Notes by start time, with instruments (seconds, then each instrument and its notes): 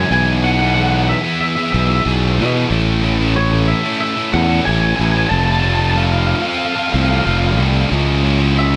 Already playing: distorted electric guitar E3 G#3
0.00 clean electric guitar G#5
0.10 fingered electric bass B1, distorted electric guitar B2 E3 B3 E4 G#4, clean electric guitar G#5
0.43 distorted electric guitar E3 B3 E4 G#4, clean electric guitar F#5
0.51 clean electric guitar F#5
0.59 distorted electric guitar B3 E4 G#4, clean electric guitar F#5
0.68 clean electric guitar F#5
0.74 distorted electric guitar B2 E3 B3 E4 G#4, clean electric guitar F#5
0.82 clean electric guitar F#5
0.88 distorted electric guitar G#4, clean electric guitar F#5
0.93 distorted electric guitar B3 E4, clean electric guitar F#5
1.04 clean electric guitar F#5
1.09 clean electric guitar E5
1.24 distorted electric guitar B3 E4 G#4
1.41 clean electric guitar E5
1.48 clean electric guitar E5
1.55 distorted electric guitar E4 G#4, clean electric guitar E5
1.60 distorted electric guitar B3, clean electric guitar E5
1.70 fingered electric bass B1, distorted electric guitar E3 B3 E4, clean electric guitar E5
1.76 distorted electric guitar G#4, clean electric guitar E5
1.86 distorted electric guitar E4 G#4, clean electric guitar E5
1.92 distorted electric guitar B3, clean electric guitar E5
2.04 fingered electric bass B1, distorted electric guitar B2 E3 B3 E4 G#4
2.37 fingered electric bass B2, distorted electric guitar E3 B3 E4 G#4
2.54 distorted electric guitar B3 E4 G#4
2.70 fingered electric bass A1, distorted electric guitar A2 E3 A3 C#4 E4 A4
3.02 distorted electric guitar A3 C#4 E4 A4
3.19 distorted electric guitar A3 C#4 E4 A4
3.34 distorted electric guitar A2 E3 A3 C#4 E4 A4, clean electric guitar C#5
3.51 distorted electric guitar A3 C#4 E4 A4
3.68 clean electric guitar E5
3.83 distorted electric guitar A3 C#4 E4 A4
4.00 clean electric guitar E5
4.16 distorted electric guitar A3 C#4 E4 A4
4.32 fingered electric bass E2, distorted electric guitar A3 C#4 E4 A4, clean electric guitar F#5
4.49 distorted electric guitar A3 C#4 E4 A4
4.65 fingered electric bass A1, distorted electric guitar A2 E3 A3 C#4 E4 A4, clean electric guitar G#5
4.73 clean electric guitar G#5
4.80 clean electric guitar G#5
4.88 clean electric guitar G#5
4.96 fingered electric bass A1, distorted electric guitar A3 C#4, clean electric guitar G#5
5.00 distorted electric guitar E4 A4, clean electric guitar G#5
5.10 clean electric guitar G#5
5.15 distorted electric guitar A3 C#4 E4 A4, clean electric guitar G#5
5.25 clean electric guitar G#5
5.29 fingered electric bass F1, distorted electric guitar F3 A3 C4 F4, clean electric guitar A5
5.34 distorted electric guitar A4, clean electric guitar A5
5.45 clean electric guitar A5
5.52 clean electric guitar A5
5.60 distorted electric guitar A3 C4, clean electric guitar A5
5.64 distorted electric guitar F4 A4, clean electric guitar A5
5.74 clean electric guitar A5
5.79 distorted electric guitar C4 F4 A4, clean electric guitar A5
5.90 clean electric guitar A5
5.95 distorted electric guitar F3 A3 C4 F4 A4, clean electric guitar F5
6.05 clean electric guitar F5
6.12 distorted electric guitar C4 F4 A4, clean electric guitar F5
6.19 clean electric guitar F5
6.27 clean electric guitar F5
6.35 clean electric guitar F5
6.42 distorted electric guitar F4 A4, clean electric guitar F5
6.47 distorted electric guitar C4, clean electric guitar F5
6.58 clean electric guitar F5
6.66 clean electric guitar F5
6.72 distorted electric guitar A4, clean electric guitar F5
6.77 distorted electric guitar C4 F4, clean electric guitar F5
6.88 clean electric guitar F5
6.93 fingered electric bass C2, distorted electric guitar A3 C4 F4 A4, clean electric guitar F5
7.03 clean electric guitar F5
7.09 distorted electric guitar C4 F4 A4, clean electric guitar F5
7.17 clean electric guitar F5
7.25 fingered electric bass F1, distorted electric guitar F3 A3 C4 F4 A4, clean electric guitar F5
7.32 clean electric guitar F5
7.40 clean electric guitar F5
7.48 clean electric guitar F5
7.57 fingered electric bass C2, distorted electric guitar A3 C4 F4 A4
7.73 distorted electric guitar C4 F4 A4
7.89 fingered electric bass C#2, distorted electric guitar C#3 G#3 C#4 E4 G#4
8.22 distorted electric guitar G#3 C#4 E4 G#4
8.38 distorted electric guitar C#4 E4 G#4
8.54 distorted electric guitar C#3 G#3 C#4 E4 G#4
8.59 clean electric guitar E5
8.71 distorted electric guitar E4 G#4